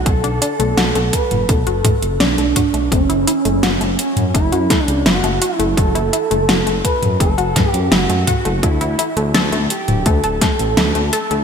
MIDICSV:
0, 0, Header, 1, 5, 480
1, 0, Start_track
1, 0, Tempo, 714286
1, 40, Time_signature, 4, 2, 24, 8
1, 7687, End_track
2, 0, Start_track
2, 0, Title_t, "Analog synth lead"
2, 0, Program_c, 0, 81
2, 42, Note_on_c, 0, 69, 108
2, 762, Note_on_c, 0, 71, 100
2, 772, Note_off_c, 0, 69, 0
2, 1002, Note_on_c, 0, 69, 105
2, 1012, Note_off_c, 0, 71, 0
2, 1478, Note_off_c, 0, 69, 0
2, 1482, Note_on_c, 0, 62, 94
2, 1934, Note_off_c, 0, 62, 0
2, 1962, Note_on_c, 0, 61, 96
2, 2654, Note_off_c, 0, 61, 0
2, 2682, Note_on_c, 0, 61, 83
2, 2904, Note_off_c, 0, 61, 0
2, 2922, Note_on_c, 0, 64, 96
2, 3258, Note_off_c, 0, 64, 0
2, 3258, Note_on_c, 0, 62, 96
2, 3374, Note_off_c, 0, 62, 0
2, 3402, Note_on_c, 0, 66, 97
2, 3738, Note_off_c, 0, 66, 0
2, 3738, Note_on_c, 0, 64, 97
2, 3854, Note_off_c, 0, 64, 0
2, 3880, Note_on_c, 0, 69, 103
2, 4573, Note_off_c, 0, 69, 0
2, 4601, Note_on_c, 0, 71, 92
2, 4823, Note_off_c, 0, 71, 0
2, 4840, Note_on_c, 0, 69, 103
2, 5176, Note_off_c, 0, 69, 0
2, 5176, Note_on_c, 0, 67, 103
2, 5321, Note_on_c, 0, 66, 93
2, 5331, Note_off_c, 0, 67, 0
2, 5800, Note_on_c, 0, 64, 83
2, 5810, Note_off_c, 0, 66, 0
2, 6280, Note_off_c, 0, 64, 0
2, 6520, Note_on_c, 0, 67, 101
2, 6759, Note_on_c, 0, 69, 119
2, 6769, Note_off_c, 0, 67, 0
2, 7476, Note_off_c, 0, 69, 0
2, 7480, Note_on_c, 0, 69, 102
2, 7687, Note_off_c, 0, 69, 0
2, 7687, End_track
3, 0, Start_track
3, 0, Title_t, "Synth arpeggio sound"
3, 0, Program_c, 1, 84
3, 40, Note_on_c, 1, 57, 81
3, 154, Note_off_c, 1, 57, 0
3, 160, Note_on_c, 1, 62, 78
3, 257, Note_off_c, 1, 62, 0
3, 280, Note_on_c, 1, 62, 76
3, 377, Note_off_c, 1, 62, 0
3, 400, Note_on_c, 1, 57, 72
3, 497, Note_off_c, 1, 57, 0
3, 520, Note_on_c, 1, 66, 83
3, 617, Note_off_c, 1, 66, 0
3, 641, Note_on_c, 1, 57, 74
3, 738, Note_off_c, 1, 57, 0
3, 1001, Note_on_c, 1, 57, 79
3, 1114, Note_off_c, 1, 57, 0
3, 1121, Note_on_c, 1, 66, 74
3, 1218, Note_off_c, 1, 66, 0
3, 1241, Note_on_c, 1, 57, 74
3, 1338, Note_off_c, 1, 57, 0
3, 1481, Note_on_c, 1, 62, 80
3, 1577, Note_off_c, 1, 62, 0
3, 1601, Note_on_c, 1, 57, 75
3, 1697, Note_off_c, 1, 57, 0
3, 1720, Note_on_c, 1, 66, 77
3, 1834, Note_off_c, 1, 66, 0
3, 1840, Note_on_c, 1, 57, 74
3, 1952, Note_off_c, 1, 57, 0
3, 1960, Note_on_c, 1, 57, 79
3, 2074, Note_off_c, 1, 57, 0
3, 2080, Note_on_c, 1, 64, 77
3, 2177, Note_off_c, 1, 64, 0
3, 2200, Note_on_c, 1, 64, 74
3, 2297, Note_off_c, 1, 64, 0
3, 2320, Note_on_c, 1, 57, 74
3, 2417, Note_off_c, 1, 57, 0
3, 2439, Note_on_c, 1, 66, 83
3, 2537, Note_off_c, 1, 66, 0
3, 2559, Note_on_c, 1, 57, 74
3, 2656, Note_off_c, 1, 57, 0
3, 2919, Note_on_c, 1, 57, 81
3, 3033, Note_off_c, 1, 57, 0
3, 3039, Note_on_c, 1, 66, 74
3, 3137, Note_off_c, 1, 66, 0
3, 3158, Note_on_c, 1, 57, 75
3, 3256, Note_off_c, 1, 57, 0
3, 3399, Note_on_c, 1, 64, 81
3, 3497, Note_off_c, 1, 64, 0
3, 3519, Note_on_c, 1, 57, 75
3, 3617, Note_off_c, 1, 57, 0
3, 3640, Note_on_c, 1, 66, 76
3, 3754, Note_off_c, 1, 66, 0
3, 3759, Note_on_c, 1, 57, 74
3, 3871, Note_off_c, 1, 57, 0
3, 3879, Note_on_c, 1, 57, 79
3, 3993, Note_off_c, 1, 57, 0
3, 3999, Note_on_c, 1, 64, 77
3, 4096, Note_off_c, 1, 64, 0
3, 4119, Note_on_c, 1, 64, 77
3, 4217, Note_off_c, 1, 64, 0
3, 4239, Note_on_c, 1, 57, 73
3, 4337, Note_off_c, 1, 57, 0
3, 4359, Note_on_c, 1, 66, 82
3, 4457, Note_off_c, 1, 66, 0
3, 4479, Note_on_c, 1, 57, 75
3, 4577, Note_off_c, 1, 57, 0
3, 4840, Note_on_c, 1, 57, 78
3, 4954, Note_off_c, 1, 57, 0
3, 4959, Note_on_c, 1, 66, 75
3, 5057, Note_off_c, 1, 66, 0
3, 5079, Note_on_c, 1, 57, 75
3, 5177, Note_off_c, 1, 57, 0
3, 5319, Note_on_c, 1, 64, 81
3, 5417, Note_off_c, 1, 64, 0
3, 5439, Note_on_c, 1, 57, 73
3, 5537, Note_off_c, 1, 57, 0
3, 5560, Note_on_c, 1, 66, 76
3, 5674, Note_off_c, 1, 66, 0
3, 5680, Note_on_c, 1, 57, 74
3, 5791, Note_off_c, 1, 57, 0
3, 5799, Note_on_c, 1, 57, 77
3, 5914, Note_off_c, 1, 57, 0
3, 5920, Note_on_c, 1, 64, 78
3, 6017, Note_off_c, 1, 64, 0
3, 6039, Note_on_c, 1, 64, 75
3, 6137, Note_off_c, 1, 64, 0
3, 6160, Note_on_c, 1, 57, 72
3, 6257, Note_off_c, 1, 57, 0
3, 6280, Note_on_c, 1, 69, 85
3, 6377, Note_off_c, 1, 69, 0
3, 6400, Note_on_c, 1, 57, 71
3, 6497, Note_off_c, 1, 57, 0
3, 6760, Note_on_c, 1, 57, 80
3, 6874, Note_off_c, 1, 57, 0
3, 6880, Note_on_c, 1, 69, 74
3, 6977, Note_off_c, 1, 69, 0
3, 7000, Note_on_c, 1, 57, 75
3, 7097, Note_off_c, 1, 57, 0
3, 7239, Note_on_c, 1, 64, 81
3, 7337, Note_off_c, 1, 64, 0
3, 7360, Note_on_c, 1, 57, 74
3, 7457, Note_off_c, 1, 57, 0
3, 7479, Note_on_c, 1, 69, 76
3, 7593, Note_off_c, 1, 69, 0
3, 7600, Note_on_c, 1, 57, 74
3, 7687, Note_off_c, 1, 57, 0
3, 7687, End_track
4, 0, Start_track
4, 0, Title_t, "Detuned saw bass"
4, 0, Program_c, 2, 39
4, 40, Note_on_c, 2, 35, 99
4, 144, Note_off_c, 2, 35, 0
4, 160, Note_on_c, 2, 35, 74
4, 264, Note_off_c, 2, 35, 0
4, 400, Note_on_c, 2, 35, 78
4, 504, Note_off_c, 2, 35, 0
4, 520, Note_on_c, 2, 35, 99
4, 624, Note_off_c, 2, 35, 0
4, 641, Note_on_c, 2, 35, 74
4, 744, Note_off_c, 2, 35, 0
4, 881, Note_on_c, 2, 30, 79
4, 984, Note_off_c, 2, 30, 0
4, 1001, Note_on_c, 2, 35, 97
4, 1104, Note_off_c, 2, 35, 0
4, 1120, Note_on_c, 2, 30, 74
4, 1224, Note_off_c, 2, 30, 0
4, 1360, Note_on_c, 2, 30, 79
4, 1464, Note_off_c, 2, 30, 0
4, 1480, Note_on_c, 2, 35, 102
4, 1584, Note_off_c, 2, 35, 0
4, 1601, Note_on_c, 2, 35, 78
4, 1704, Note_off_c, 2, 35, 0
4, 1840, Note_on_c, 2, 35, 78
4, 1944, Note_off_c, 2, 35, 0
4, 1961, Note_on_c, 2, 30, 102
4, 2064, Note_off_c, 2, 30, 0
4, 2080, Note_on_c, 2, 30, 79
4, 2184, Note_off_c, 2, 30, 0
4, 2319, Note_on_c, 2, 30, 79
4, 2423, Note_off_c, 2, 30, 0
4, 2439, Note_on_c, 2, 30, 99
4, 2543, Note_off_c, 2, 30, 0
4, 2559, Note_on_c, 2, 30, 76
4, 2663, Note_off_c, 2, 30, 0
4, 2799, Note_on_c, 2, 42, 80
4, 2903, Note_off_c, 2, 42, 0
4, 2920, Note_on_c, 2, 30, 95
4, 3024, Note_off_c, 2, 30, 0
4, 3038, Note_on_c, 2, 42, 74
4, 3143, Note_off_c, 2, 42, 0
4, 3279, Note_on_c, 2, 37, 80
4, 3383, Note_off_c, 2, 37, 0
4, 3399, Note_on_c, 2, 30, 100
4, 3503, Note_off_c, 2, 30, 0
4, 3519, Note_on_c, 2, 30, 76
4, 3623, Note_off_c, 2, 30, 0
4, 3759, Note_on_c, 2, 30, 80
4, 3863, Note_off_c, 2, 30, 0
4, 3880, Note_on_c, 2, 30, 97
4, 3984, Note_off_c, 2, 30, 0
4, 3999, Note_on_c, 2, 30, 78
4, 4103, Note_off_c, 2, 30, 0
4, 4239, Note_on_c, 2, 30, 79
4, 4343, Note_off_c, 2, 30, 0
4, 4358, Note_on_c, 2, 30, 100
4, 4463, Note_off_c, 2, 30, 0
4, 4479, Note_on_c, 2, 30, 74
4, 4583, Note_off_c, 2, 30, 0
4, 4719, Note_on_c, 2, 42, 81
4, 4823, Note_off_c, 2, 42, 0
4, 4840, Note_on_c, 2, 30, 99
4, 4944, Note_off_c, 2, 30, 0
4, 4959, Note_on_c, 2, 30, 76
4, 5063, Note_off_c, 2, 30, 0
4, 5199, Note_on_c, 2, 42, 80
4, 5303, Note_off_c, 2, 42, 0
4, 5319, Note_on_c, 2, 30, 100
4, 5423, Note_off_c, 2, 30, 0
4, 5439, Note_on_c, 2, 42, 76
4, 5543, Note_off_c, 2, 42, 0
4, 5680, Note_on_c, 2, 30, 80
4, 5783, Note_off_c, 2, 30, 0
4, 5800, Note_on_c, 2, 38, 99
4, 5904, Note_off_c, 2, 38, 0
4, 5920, Note_on_c, 2, 38, 77
4, 6024, Note_off_c, 2, 38, 0
4, 6160, Note_on_c, 2, 38, 80
4, 6264, Note_off_c, 2, 38, 0
4, 6280, Note_on_c, 2, 38, 100
4, 6384, Note_off_c, 2, 38, 0
4, 6400, Note_on_c, 2, 38, 76
4, 6504, Note_off_c, 2, 38, 0
4, 6640, Note_on_c, 2, 26, 80
4, 6744, Note_off_c, 2, 26, 0
4, 6760, Note_on_c, 2, 38, 99
4, 6864, Note_off_c, 2, 38, 0
4, 6879, Note_on_c, 2, 26, 74
4, 6983, Note_off_c, 2, 26, 0
4, 7120, Note_on_c, 2, 33, 79
4, 7224, Note_off_c, 2, 33, 0
4, 7239, Note_on_c, 2, 38, 103
4, 7343, Note_off_c, 2, 38, 0
4, 7359, Note_on_c, 2, 38, 77
4, 7463, Note_off_c, 2, 38, 0
4, 7600, Note_on_c, 2, 38, 81
4, 7687, Note_off_c, 2, 38, 0
4, 7687, End_track
5, 0, Start_track
5, 0, Title_t, "Drums"
5, 41, Note_on_c, 9, 36, 121
5, 41, Note_on_c, 9, 42, 65
5, 108, Note_off_c, 9, 36, 0
5, 108, Note_off_c, 9, 42, 0
5, 161, Note_on_c, 9, 42, 37
5, 228, Note_off_c, 9, 42, 0
5, 281, Note_on_c, 9, 42, 89
5, 348, Note_off_c, 9, 42, 0
5, 401, Note_on_c, 9, 42, 41
5, 468, Note_off_c, 9, 42, 0
5, 521, Note_on_c, 9, 38, 117
5, 521, Note_on_c, 9, 42, 65
5, 588, Note_off_c, 9, 38, 0
5, 588, Note_off_c, 9, 42, 0
5, 641, Note_on_c, 9, 42, 39
5, 708, Note_off_c, 9, 42, 0
5, 760, Note_on_c, 9, 42, 90
5, 761, Note_on_c, 9, 36, 61
5, 827, Note_off_c, 9, 42, 0
5, 828, Note_off_c, 9, 36, 0
5, 881, Note_on_c, 9, 42, 40
5, 881, Note_on_c, 9, 47, 56
5, 948, Note_off_c, 9, 42, 0
5, 948, Note_off_c, 9, 47, 0
5, 1001, Note_on_c, 9, 36, 117
5, 1001, Note_on_c, 9, 42, 67
5, 1068, Note_off_c, 9, 36, 0
5, 1068, Note_off_c, 9, 42, 0
5, 1120, Note_on_c, 9, 42, 38
5, 1187, Note_off_c, 9, 42, 0
5, 1240, Note_on_c, 9, 42, 95
5, 1240, Note_on_c, 9, 47, 84
5, 1241, Note_on_c, 9, 36, 100
5, 1307, Note_off_c, 9, 42, 0
5, 1307, Note_off_c, 9, 47, 0
5, 1308, Note_off_c, 9, 36, 0
5, 1360, Note_on_c, 9, 42, 40
5, 1428, Note_off_c, 9, 42, 0
5, 1480, Note_on_c, 9, 38, 117
5, 1480, Note_on_c, 9, 42, 64
5, 1547, Note_off_c, 9, 38, 0
5, 1547, Note_off_c, 9, 42, 0
5, 1601, Note_on_c, 9, 42, 40
5, 1668, Note_off_c, 9, 42, 0
5, 1721, Note_on_c, 9, 36, 59
5, 1721, Note_on_c, 9, 42, 90
5, 1721, Note_on_c, 9, 47, 56
5, 1788, Note_off_c, 9, 36, 0
5, 1788, Note_off_c, 9, 42, 0
5, 1788, Note_off_c, 9, 47, 0
5, 1841, Note_on_c, 9, 42, 40
5, 1909, Note_off_c, 9, 42, 0
5, 1961, Note_on_c, 9, 36, 120
5, 1962, Note_on_c, 9, 42, 64
5, 2028, Note_off_c, 9, 36, 0
5, 2029, Note_off_c, 9, 42, 0
5, 2081, Note_on_c, 9, 42, 38
5, 2148, Note_off_c, 9, 42, 0
5, 2201, Note_on_c, 9, 42, 91
5, 2268, Note_off_c, 9, 42, 0
5, 2320, Note_on_c, 9, 42, 39
5, 2387, Note_off_c, 9, 42, 0
5, 2440, Note_on_c, 9, 38, 116
5, 2440, Note_on_c, 9, 42, 65
5, 2507, Note_off_c, 9, 38, 0
5, 2507, Note_off_c, 9, 42, 0
5, 2561, Note_on_c, 9, 42, 39
5, 2628, Note_off_c, 9, 42, 0
5, 2680, Note_on_c, 9, 42, 88
5, 2748, Note_off_c, 9, 42, 0
5, 2801, Note_on_c, 9, 42, 38
5, 2801, Note_on_c, 9, 47, 55
5, 2868, Note_off_c, 9, 42, 0
5, 2868, Note_off_c, 9, 47, 0
5, 2921, Note_on_c, 9, 36, 119
5, 2921, Note_on_c, 9, 42, 64
5, 2988, Note_off_c, 9, 36, 0
5, 2988, Note_off_c, 9, 42, 0
5, 3040, Note_on_c, 9, 42, 38
5, 3108, Note_off_c, 9, 42, 0
5, 3160, Note_on_c, 9, 38, 62
5, 3160, Note_on_c, 9, 42, 90
5, 3161, Note_on_c, 9, 36, 106
5, 3227, Note_off_c, 9, 38, 0
5, 3227, Note_off_c, 9, 42, 0
5, 3228, Note_off_c, 9, 36, 0
5, 3280, Note_on_c, 9, 42, 40
5, 3347, Note_off_c, 9, 42, 0
5, 3400, Note_on_c, 9, 38, 118
5, 3400, Note_on_c, 9, 42, 65
5, 3467, Note_off_c, 9, 38, 0
5, 3467, Note_off_c, 9, 42, 0
5, 3520, Note_on_c, 9, 42, 38
5, 3587, Note_off_c, 9, 42, 0
5, 3640, Note_on_c, 9, 42, 91
5, 3707, Note_off_c, 9, 42, 0
5, 3760, Note_on_c, 9, 42, 39
5, 3828, Note_off_c, 9, 42, 0
5, 3880, Note_on_c, 9, 36, 118
5, 3881, Note_on_c, 9, 42, 62
5, 3947, Note_off_c, 9, 36, 0
5, 3948, Note_off_c, 9, 42, 0
5, 4001, Note_on_c, 9, 42, 36
5, 4068, Note_off_c, 9, 42, 0
5, 4121, Note_on_c, 9, 42, 85
5, 4188, Note_off_c, 9, 42, 0
5, 4241, Note_on_c, 9, 42, 37
5, 4308, Note_off_c, 9, 42, 0
5, 4361, Note_on_c, 9, 38, 116
5, 4361, Note_on_c, 9, 42, 62
5, 4428, Note_off_c, 9, 38, 0
5, 4428, Note_off_c, 9, 42, 0
5, 4481, Note_on_c, 9, 42, 37
5, 4548, Note_off_c, 9, 42, 0
5, 4600, Note_on_c, 9, 36, 61
5, 4601, Note_on_c, 9, 42, 86
5, 4667, Note_off_c, 9, 36, 0
5, 4668, Note_off_c, 9, 42, 0
5, 4721, Note_on_c, 9, 42, 37
5, 4721, Note_on_c, 9, 47, 57
5, 4789, Note_off_c, 9, 42, 0
5, 4789, Note_off_c, 9, 47, 0
5, 4840, Note_on_c, 9, 36, 115
5, 4841, Note_on_c, 9, 42, 60
5, 4907, Note_off_c, 9, 36, 0
5, 4909, Note_off_c, 9, 42, 0
5, 4961, Note_on_c, 9, 42, 36
5, 5028, Note_off_c, 9, 42, 0
5, 5080, Note_on_c, 9, 36, 104
5, 5081, Note_on_c, 9, 38, 61
5, 5081, Note_on_c, 9, 42, 90
5, 5081, Note_on_c, 9, 47, 84
5, 5147, Note_off_c, 9, 36, 0
5, 5148, Note_off_c, 9, 38, 0
5, 5148, Note_off_c, 9, 42, 0
5, 5148, Note_off_c, 9, 47, 0
5, 5201, Note_on_c, 9, 42, 37
5, 5269, Note_off_c, 9, 42, 0
5, 5320, Note_on_c, 9, 38, 114
5, 5320, Note_on_c, 9, 42, 60
5, 5388, Note_off_c, 9, 38, 0
5, 5388, Note_off_c, 9, 42, 0
5, 5440, Note_on_c, 9, 42, 38
5, 5508, Note_off_c, 9, 42, 0
5, 5560, Note_on_c, 9, 36, 61
5, 5560, Note_on_c, 9, 42, 85
5, 5560, Note_on_c, 9, 47, 56
5, 5627, Note_off_c, 9, 36, 0
5, 5627, Note_off_c, 9, 42, 0
5, 5627, Note_off_c, 9, 47, 0
5, 5680, Note_on_c, 9, 42, 38
5, 5748, Note_off_c, 9, 42, 0
5, 5800, Note_on_c, 9, 36, 111
5, 5800, Note_on_c, 9, 42, 61
5, 5867, Note_off_c, 9, 36, 0
5, 5868, Note_off_c, 9, 42, 0
5, 5921, Note_on_c, 9, 42, 36
5, 5988, Note_off_c, 9, 42, 0
5, 6041, Note_on_c, 9, 42, 82
5, 6108, Note_off_c, 9, 42, 0
5, 6161, Note_on_c, 9, 42, 37
5, 6228, Note_off_c, 9, 42, 0
5, 6280, Note_on_c, 9, 38, 115
5, 6280, Note_on_c, 9, 42, 61
5, 6347, Note_off_c, 9, 38, 0
5, 6347, Note_off_c, 9, 42, 0
5, 6401, Note_on_c, 9, 42, 36
5, 6468, Note_off_c, 9, 42, 0
5, 6520, Note_on_c, 9, 42, 85
5, 6587, Note_off_c, 9, 42, 0
5, 6640, Note_on_c, 9, 42, 37
5, 6640, Note_on_c, 9, 47, 59
5, 6707, Note_off_c, 9, 42, 0
5, 6707, Note_off_c, 9, 47, 0
5, 6759, Note_on_c, 9, 42, 62
5, 6760, Note_on_c, 9, 36, 108
5, 6826, Note_off_c, 9, 42, 0
5, 6827, Note_off_c, 9, 36, 0
5, 6878, Note_on_c, 9, 42, 36
5, 6946, Note_off_c, 9, 42, 0
5, 6999, Note_on_c, 9, 38, 57
5, 6999, Note_on_c, 9, 42, 83
5, 7000, Note_on_c, 9, 36, 98
5, 7066, Note_off_c, 9, 38, 0
5, 7066, Note_off_c, 9, 42, 0
5, 7067, Note_off_c, 9, 36, 0
5, 7119, Note_on_c, 9, 42, 36
5, 7186, Note_off_c, 9, 42, 0
5, 7239, Note_on_c, 9, 38, 113
5, 7239, Note_on_c, 9, 42, 60
5, 7306, Note_off_c, 9, 38, 0
5, 7306, Note_off_c, 9, 42, 0
5, 7359, Note_on_c, 9, 42, 36
5, 7426, Note_off_c, 9, 42, 0
5, 7478, Note_on_c, 9, 42, 85
5, 7545, Note_off_c, 9, 42, 0
5, 7599, Note_on_c, 9, 42, 36
5, 7667, Note_off_c, 9, 42, 0
5, 7687, End_track
0, 0, End_of_file